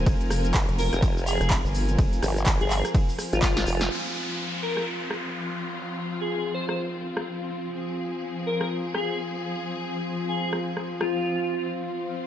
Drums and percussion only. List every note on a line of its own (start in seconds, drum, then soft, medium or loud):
0.06 kick loud
0.06 ride medium
0.06 cabasa soft
0.21 closed hi-hat medium
0.30 cross-stick medium
0.30 open hi-hat loud
0.30 cabasa medium
0.45 closed hi-hat medium
0.45 cabasa soft
0.54 kick loud
0.54 clap loud
0.54 ride medium
0.54 cabasa soft
0.69 closed hi-hat medium
0.78 open hi-hat loud
0.78 cabasa medium
0.93 cross-stick medium
0.93 closed hi-hat medium
0.93 cabasa soft
1.02 kick loud
1.02 ride medium
1.02 cabasa soft
1.17 cabasa soft
1.26 open hi-hat loud
1.26 cabasa medium
1.41 cross-stick medium
1.41 closed hi-hat medium
1.41 cabasa soft
1.50 kick loud
1.50 clap loud
1.50 ride medium
1.50 cabasa soft
1.65 cabasa soft
1.75 open hi-hat loud
1.75 cabasa medium
1.89 closed hi-hat medium
1.89 cabasa soft
1.99 kick loud
1.99 ride medium
1.99 cabasa soft
2.13 closed hi-hat medium
2.13 cabasa soft
2.23 cross-stick medium
2.23 open hi-hat loud
2.23 cabasa medium
2.37 closed hi-hat medium
2.37 cabasa soft
2.46 kick loud
2.46 clap loud
2.46 ride medium
2.46 cabasa soft
2.61 closed hi-hat medium
2.70 clap medium
2.70 open hi-hat loud
2.70 cabasa medium
2.85 cross-stick medium
2.85 closed hi-hat medium
2.85 cabasa soft
2.95 kick loud
2.95 ride medium
2.95 cabasa soft
3.09 open hi-hat medium
3.09 cabasa soft
3.19 cross-stick medium
3.19 open hi-hat loud
3.19 cabasa medium
3.33 closed hi-hat medium
3.33 cabasa soft
3.42 kick loud
3.42 snare medium
3.42 clap loud
3.42 ride medium
3.42 cabasa soft
3.57 snare medium
3.57 closed hi-hat soft
3.57 cabasa soft
3.67 open hi-hat loud
3.67 cabasa medium
3.81 snare medium
3.81 closed hi-hat medium
3.81 cabasa soft
3.91 crash medium
4.77 cross-stick medium
5.11 cross-stick medium
6.69 cross-stick medium
7.17 cross-stick medium
8.61 cross-stick medium
8.95 cross-stick medium
10.53 cross-stick medium
10.77 cross-stick medium
11.01 cross-stick medium